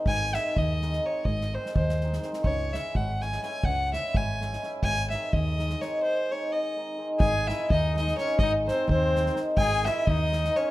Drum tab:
SD |--o---oo--|-o-o-ooooo|--o---ooo-|--o---ooo-|
BD |o---o-----|o---o-----|o---o-----|o---o-----|

SD |--o---ooo-|----------|--o---ooo-|--o---ooo-|
BD |o---o-----|----------|o---o-----|o---o-----|

SD |--o---ooo-|
BD |o---o-----|